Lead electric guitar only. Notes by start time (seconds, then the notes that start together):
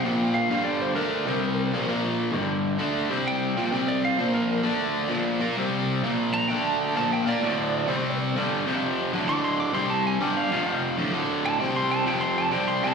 Already playing: G5
0.34 F5
0.51 F5
0.65 D5
0.82 C5
0.95 A#4
3.28 G5
3.88 D5
4.05 F5
4.21 C5
4.34 A#4
6.34 A#5
6.48 G5
6.64 A5
6.79 G5
6.97 A5
7.13 G5
7.29 D5
9.29 D6
9.44 C6
9.60 D6
9.74 C6
9.90 A5
10.07 G#5
10.22 G5
10.37 F5
11.46 A5
11.60 G5
11.76 C6
11.91 A5
12.08 G5
12.21 C6
12.38 A5
12.52 G5
12.68 C6
12.84 A5